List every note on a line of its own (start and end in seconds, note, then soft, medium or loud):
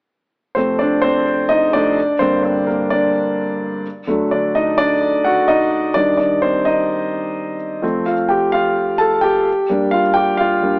0.55 1.23 F2 soft
0.55 1.23 C3 soft
0.55 1.24 A3 medium
0.55 0.79 C4 medium
0.55 0.78 C5 medium
0.79 1.03 D4 medium
0.79 1.04 D5 medium
1.02 1.47 C4 medium
1.02 1.51 C5 medium
1.49 1.73 D#4 medium
1.49 1.74 D#5 medium
1.73 1.95 F2 soft
1.73 1.95 C3 soft
1.73 1.96 A3 soft
1.73 2.18 D4 medium
1.73 2.17 D5 loud
2.19 3.81 G2 medium
2.19 3.81 D3 medium
2.19 2.67 A#3 medium
2.19 2.43 C4 medium
2.19 2.41 C5 medium
2.43 2.66 C4 medium
2.43 2.68 C5 medium
2.67 2.90 A#3 medium
2.67 2.89 A#4 medium
2.90 3.81 D4 medium
2.90 3.80 D5 medium
4.07 4.74 D3 medium
4.07 4.75 F#3 soft
4.07 4.75 A3 medium
4.31 4.54 D4 medium
4.31 4.53 D5 medium
4.55 4.77 D#4 medium
4.55 4.77 D#5 medium
4.78 5.22 D4 medium
4.78 5.26 D5 loud
5.24 5.47 F#4 medium
5.24 5.49 F#5 medium
5.48 5.93 D#4 medium
5.48 5.92 D#5 medium
5.94 6.62 D#3 medium
5.94 6.62 G3 soft
5.94 6.18 D4 medium
5.94 6.62 D#4 medium
5.94 6.16 D5 loud
6.17 6.41 D4 soft
6.17 6.42 D5 medium
6.42 6.65 C4 medium
6.42 6.64 C5 medium
6.65 7.56 D#4 medium
6.65 7.55 D#5 medium
7.82 8.14 F3 medium
7.82 8.14 A3 soft
7.82 8.14 C4 medium
8.06 8.12 F4 soft
8.06 8.11 F5 medium
8.29 8.52 G4 medium
8.29 8.53 G5 medium
8.52 8.97 F4 medium
8.52 9.01 F5 medium
8.98 9.22 A4 medium
8.98 9.23 A5 medium
9.21 9.67 G4 medium
9.21 9.66 G5 medium
9.70 10.01 G3 medium
9.70 10.01 A#3 soft
9.70 10.02 D4 medium
9.91 10.16 F4 medium
9.91 10.17 F5 medium
10.14 10.39 G4 medium
10.14 10.37 G5 medium
10.37 10.79 F4 medium
10.37 10.79 F5 medium
10.62 10.79 G3 soft
10.62 10.79 A#3 soft
10.62 10.79 D4 soft